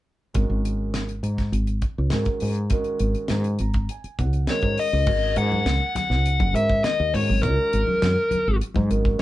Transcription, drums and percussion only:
0.35 kick, closed hi-hat
0.65 closed hi-hat
0.94 snare, closed hi-hat
1.09 closed hi-hat
1.24 closed hi-hat
1.38 kick, snare, closed hi-hat
1.53 closed hi-hat
1.67 closed hi-hat
1.82 kick, closed hi-hat
2.10 snare, closed hi-hat
2.25 kick, closed hi-hat
2.40 open hi-hat
2.55 closed hi-hat
2.70 kick, closed hi-hat
2.84 closed hi-hat
2.99 closed hi-hat
3.15 closed hi-hat
3.28 snare, closed hi-hat
3.44 closed hi-hat
3.59 closed hi-hat
3.74 kick, closed hi-hat
3.89 closed hi-hat
4.04 closed hi-hat
4.19 kick, closed hi-hat
4.33 closed hi-hat
4.47 snare, closed hi-hat
4.62 kick, closed hi-hat
4.78 open hi-hat
5.06 kick, crash
5.36 closed hi-hat
5.52 high conga
5.66 snare, closed hi-hat
5.95 snare, closed hi-hat, high conga, low conga
6.11 snare
6.26 closed hi-hat
6.40 kick, high conga
6.55 closed hi-hat
6.70 kick
6.84 snare, closed hi-hat
7.14 open hi-hat, low conga
7.29 high conga
7.43 kick, closed hi-hat
7.73 closed hi-hat
7.87 high conga
8.02 snare, closed hi-hat
8.31 closed hi-hat, high conga, low conga
8.61 closed hi-hat
8.74 kick, high conga
8.91 closed hi-hat
9.05 kick

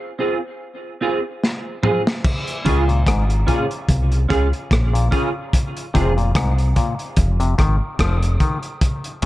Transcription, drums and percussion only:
1.44 snare
1.83 mid tom
2.07 snare
2.24 kick, crash
2.47 closed hi-hat
2.66 kick, closed hi-hat
2.89 closed hi-hat
3.07 kick, cross-stick, closed hi-hat
3.30 closed hi-hat
3.48 kick, closed hi-hat
3.71 closed hi-hat
3.89 kick, closed hi-hat
4.12 closed hi-hat
4.30 kick, cross-stick, closed hi-hat
4.53 closed hi-hat
4.71 kick, cross-stick, closed hi-hat
4.95 closed hi-hat
5.12 kick, closed hi-hat
5.53 kick, closed hi-hat
5.77 closed hi-hat
5.95 kick, closed hi-hat
6.18 closed hi-hat
6.35 kick, cross-stick, closed hi-hat
6.58 closed hi-hat
6.76 kick, closed hi-hat
6.99 closed hi-hat
7.17 kick, closed hi-hat
7.40 closed hi-hat
7.59 kick, cross-stick, closed hi-hat
7.99 kick, cross-stick, closed hi-hat
8.22 closed hi-hat
8.40 kick, closed hi-hat
8.63 closed hi-hat
8.81 kick, closed hi-hat
9.04 closed hi-hat
9.22 closed hi-hat

